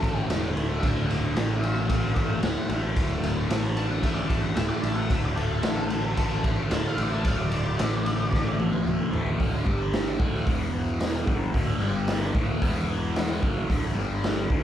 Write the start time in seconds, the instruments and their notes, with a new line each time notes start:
Already playing: picked electric bass A1, distorted electric guitar D2 D3 A3, tonewheel organ F#3 A3 D4 F#4, lead electric guitar A4
0.02 distorted electric guitar A2, kick, ride
0.29 picked electric bass E1, distorted electric guitar D3, snare, ride
0.55 picked electric bass D1, distorted electric guitar A3, ride
0.80 picked electric bass D1, distorted electric guitar D2, lead electric guitar F#5 A5, kick, ride
1.07 distorted electric guitar A2, lead electric guitar F#5 A5, ride
1.35 picked electric bass A1, distorted electric guitar A3, lead electric guitar F#5 A5, snare, ride
1.60 distorted electric guitar D3, lead electric guitar D5 F5, ride
1.88 distorted electric guitar A3, lead electric guitar D5 F5, kick, ride
2.15 distorted electric guitar A2, lead electric guitar D5 F5, kick, ride
2.41 picked electric bass D1, distorted electric guitar D3, lead electric guitar F#5, snare, ride
2.69 picked electric bass A1, distorted electric guitar A3, ride
2.96 picked electric bass D1, distorted electric guitar D2, kick, ride
3.23 distorted electric guitar A2, ride
3.50 picked electric bass A1, distorted electric guitar A3, snare, ride
3.76 distorted electric guitar D3, lead electric guitar A5, ride
3.90 lead electric guitar F#5
4.03 distorted electric guitar A3, lead electric guitar E5, kick, ride
4.14 lead electric guitar D5
4.28 distorted electric guitar A2, lead electric guitar A5, kick, ride
4.41 lead electric guitar F#5
4.55 picked electric bass D1, distorted electric guitar D3, lead electric guitar E5, snare, ride
4.68 lead electric guitar D5
4.82 picked electric bass A1, distorted electric guitar A3, lead electric guitar A5, ride
4.96 lead electric guitar F#5
5.10 picked electric bass D1, distorted electric guitar D2, lead electric guitar E5, kick, ride
5.25 lead electric guitar D5
5.37 distorted electric guitar A2, lead electric guitar A4, ride
5.63 picked electric bass A1, distorted electric guitar A3, snare, ride
5.90 distorted electric guitar D3, ride
6.17 distorted electric guitar A3, kick, ride
6.44 distorted electric guitar A2, kick, ride
6.70 picked electric bass D1, distorted electric guitar D3, lead electric guitar A5, snare, ride
6.88 lead electric guitar F5
6.98 picked electric bass A1, distorted electric guitar A3, ride
7.02 lead electric guitar D5
7.13 lead electric guitar A5
7.25 picked electric bass D1, distorted electric guitar D2, lead electric guitar F5, kick, ride
7.40 lead electric guitar D5
7.51 distorted electric guitar A2, lead electric guitar D5, ride
7.79 picked electric bass A1, distorted electric guitar A3, snare, ride
8.06 distorted electric guitar D3, ride
8.32 distorted electric guitar A3, kick, snare
8.59 distorted electric guitar A2, high tom
8.73 high tom
8.85 picked electric bass D1, distorted electric guitar D3, mid tom
9.11 picked electric bass A1, distorted electric guitar A3, floor tom
9.27 floor tom
9.38 picked electric bass D1, distorted electric guitar D2 A2 D3, tonewheel organ F#3 A3 D4 F#4, kick, open hi-hat
9.65 picked electric bass G1, distorted electric guitar G2 D3 G3, tonewheel organ G3 G4 D5, kick
9.93 snare, open hi-hat
10.19 picked electric bass D1, distorted electric guitar D2 A2 D3, tonewheel organ A3 F#4 A4, kick
10.34 snare
10.45 picked electric bass E1, distorted electric guitar E2 B2 E3, tonewheel organ E3 B3 E4 B4, kick, open hi-hat
11.00 snare, open hi-hat
11.26 picked electric bass F#1, distorted electric guitar F#2 C#3 F#3, tonewheel organ A3 D4 F#4 A4, kick
11.53 picked electric bass D1, distorted electric guitar D2 A2 D3, kick, open hi-hat
11.80 picked electric bass G1, distorted electric guitar G2 D3 G3, tonewheel organ G3 G4 D5
12.07 snare, open hi-hat
12.34 picked electric bass D1, distorted electric guitar D2 A2 D3, tonewheel organ A3 F#4 A4, kick
12.61 picked electric bass E1, distorted electric guitar E2 B2 E3, tonewheel organ E3 B3 E4 B4, kick, open hi-hat
13.16 snare, open hi-hat
13.42 picked electric bass F#1, distorted electric guitar F#2 C#3 F#3, tonewheel organ A3 D4 F#4 A4, kick
13.69 picked electric bass D1, distorted electric guitar D2 A2 D3, kick, open hi-hat
13.95 picked electric bass G1, distorted electric guitar G2 D3 G3, tonewheel organ G3 G4 D5
14.24 snare, open hi-hat
14.49 picked electric bass D1, distorted electric guitar D2 A2 D3, tonewheel organ A3 D4 F#4 A4, kick